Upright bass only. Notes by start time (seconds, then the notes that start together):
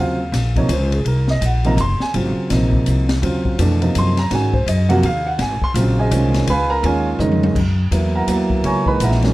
Already playing: D#2
0.32 A#1
0.69 C#2
1.05 C2
1.41 A#1
1.77 F#1
2.00 muted upright bass stroke
2.14 G#1
2.37 muted upright bass stroke
2.50 A#1
2.87 C2
3.22 D#2
3.59 F2
3.96 F#2
4.31 G#2
4.66 F#2
5.03 D#2
5.39 G#1
5.62 muted upright bass stroke
5.74 A#1
6.11 C2
6.47 C#2
6.83 D#2
7.19 F2
7.55 F#2
7.91 E2
8.27 D#2
8.64 C#2
9.00 A#1